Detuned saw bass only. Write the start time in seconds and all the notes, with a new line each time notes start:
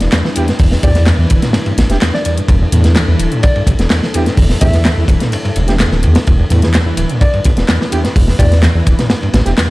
0.01 E1
0.59 E1
0.83 E2
1.19 E2
1.31 D1
1.78 A1
1.90 E1
2.48 E1
2.72 E2
3.08 E2
3.20 D1
3.67 A1
3.79 E1
4.38 E1
4.62 E2
4.98 E2
5.08 D1
5.56 E1
5.92 D1
6.03 E2
6.28 E1
6.50 E2
6.86 E2
6.98 D1
7.45 A1
7.57 E1
8.16 E1
8.39 E2
8.75 E2
8.87 D1
9.34 A1
9.46 E1